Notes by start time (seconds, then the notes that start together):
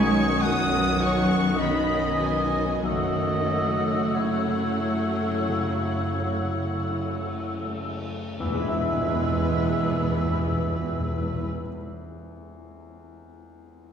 Already playing: B1 D#3 F#3 G#3 B3 C#4 D#4 F#4 C#5 G#5 C#6 D#6
0.42 F#2 F#3 C#4 D#4 F#5 D#6
1.00 C#5 C#6
1.57 D#3 C#4 D#4 D#5
1.62 B5
2.20 F#3 B3 G#5
2.83 F#1 F#2 D#3 F#3 A3 C#4 F#4 D#5 F#5 E6
3.50 C#5
4.14 C#3 A3 E4 C#5
4.81 A3
5.49 C#3
6.19 C#5
6.91 E4
7.66 A3
8.39 E2 E3 G#3 B3 E4 G#4 B4 E5 E6, tam-tam
8.46 E2 E3
8.53 E2 G#3
8.60 E2 E4
8.66 E2 E5
8.73 E2
8.80 E2
8.87 E2
8.94 E2
9.01 E2
9.08 E2
9.15 E2
9.22 E2
9.29 E2
9.36 E2
9.44 E2
9.50 E2
9.57 E2
9.63 E2
9.70 E2
9.77 E2
9.84 E2
9.91 E2
9.97 E2
10.04 E2
10.11 E2
10.18 E2
10.25 E2
10.31 E2
10.38 E2
10.45 E2
10.52 E2
10.59 E2
10.66 E2
10.72 E2
10.79 E2
10.86 E2
10.93 E2
11.00 E2
11.07 E2
11.14 E2
11.20 E2
11.27 E2
11.35 E2
11.42 E2